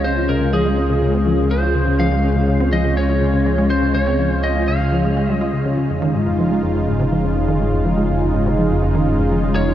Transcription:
Already playing: analog synth bass C#2, analog synth pad C#3 G#3 C#4 F4
0.04 synth arpeggio sound C#4, lead electric guitar C5
0.17 synth arpeggio sound F4
0.29 synth arpeggio sound C#3, lead electric guitar A#4
0.41 synth arpeggio sound C#3
0.53 synth arpeggio sound F3, lead electric guitar G#4
0.65 synth arpeggio sound G#3
0.78 synth arpeggio sound C#4
0.90 synth arpeggio sound C#3
1.02 synth arpeggio sound C#3
1.14 synth arpeggio sound C4
1.26 synth arpeggio sound F3
1.38 synth arpeggio sound C#3
1.51 synth arpeggio sound C#4, lead electric guitar C5
1.63 synth arpeggio sound F4
1.75 synth arpeggio sound C#3
1.87 synth arpeggio sound C#3
1.99 synth arpeggio sound F3, lead electric guitar F5
2.12 synth arpeggio sound G#3
2.24 synth arpeggio sound C#4
2.36 synth arpeggio sound C#3
2.48 synth arpeggio sound C#3
2.60 synth arpeggio sound C4
2.73 synth arpeggio sound F3, lead electric guitar D#5
2.85 synth arpeggio sound C#3
2.97 synth arpeggio sound C#4, lead electric guitar C#5
3.09 synth arpeggio sound F4
3.22 synth arpeggio sound C#3
3.34 synth arpeggio sound C#3
3.46 synth arpeggio sound F3
3.58 synth arpeggio sound G#3
3.70 synth arpeggio sound C#4, lead electric guitar C5
3.83 synth arpeggio sound C#3
3.95 synth arpeggio sound C#3, lead electric guitar C#5
4.07 synth arpeggio sound C4
4.19 synth arpeggio sound F3
4.31 synth arpeggio sound C#3, lead electric guitar C5
4.43 synth arpeggio sound C#4, lead electric guitar D#5
4.56 synth arpeggio sound F4
4.68 synth arpeggio sound C#3, lead electric guitar F5
4.80 synth arpeggio sound C#3
4.92 synth arpeggio sound F3
5.05 synth arpeggio sound G#3
5.17 synth arpeggio sound G#3
5.29 synth arpeggio sound G3
5.34 lead electric guitar D#5
5.41 synth arpeggio sound F4
5.53 synth arpeggio sound C#3
5.66 synth arpeggio sound C#3
5.78 synth arpeggio sound C#3
5.90 analog synth bass F1, synth arpeggio sound F2, analog synth pad G#3 D#4 F4
6.02 synth arpeggio sound D#3
6.14 synth arpeggio sound G#2
6.26 synth arpeggio sound F2
6.39 synth arpeggio sound F3
6.51 synth arpeggio sound G#3
6.63 synth arpeggio sound F2
6.75 synth arpeggio sound F2
6.88 synth arpeggio sound G#2
7.00 synth arpeggio sound C3
7.12 synth arpeggio sound F3
7.24 synth arpeggio sound F2
7.36 synth arpeggio sound F2
7.48 synth arpeggio sound D#3
7.61 synth arpeggio sound G#2
7.73 synth arpeggio sound F2
7.85 synth arpeggio sound F3
7.97 synth arpeggio sound G#3
8.10 synth arpeggio sound F2
8.22 synth arpeggio sound F2
8.34 synth arpeggio sound G#2
8.46 synth arpeggio sound C3
8.58 synth arpeggio sound F3
8.71 synth arpeggio sound F2
8.83 synth arpeggio sound F2
8.95 synth arpeggio sound D#3
9.07 synth arpeggio sound G#2
9.19 synth arpeggio sound F2
9.31 synth arpeggio sound F3
9.44 synth arpeggio sound G#3
9.55 synth arpeggio sound F2, lead electric guitar C#5
9.68 synth arpeggio sound F2

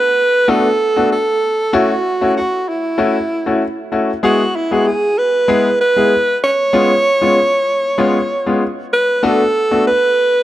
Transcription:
Already playing: alto saxophone B4
0.48 grand piano A3 B3 D4 F#4, alto saxophone A4
0.96 grand piano A3 B3 D4 F#4
1.12 alto saxophone A4
1.73 grand piano A3 C#4 E4 F#4, alto saxophone F#4
2.21 grand piano A3 C#4 E4 F#4
2.37 alto saxophone F#4
2.69 alto saxophone E4
2.98 grand piano A3 C#4 E4 F#4
3.46 grand piano A3 C#4 E4 F#4
3.92 grand piano A3 C#4 E4 F#4
4.23 grand piano G#3 B3 E4 G#4, alto saxophone F#4
4.56 alto saxophone E4
4.71 grand piano G#3 B3 E4 G#4, alto saxophone F#4
4.87 alto saxophone G#4
5.18 alto saxophone B4
5.48 grand piano G#3 B3 E4 G#4
5.81 alto saxophone B4
5.96 grand piano G#3 B3 E4 G#4
6.43 alto saxophone C#5
6.73 grand piano G#3 B3 C#4 F4
7.21 grand piano G#3 B3 C#4 F4
7.98 grand piano G#3 B3 C#4 F4
8.46 grand piano G#3 B3 C#4 F4
8.93 alto saxophone B4
9.23 grand piano A3 B3 D4 F#4, alto saxophone A4
9.71 grand piano A3 B3 D4 F#4
9.87 alto saxophone B4

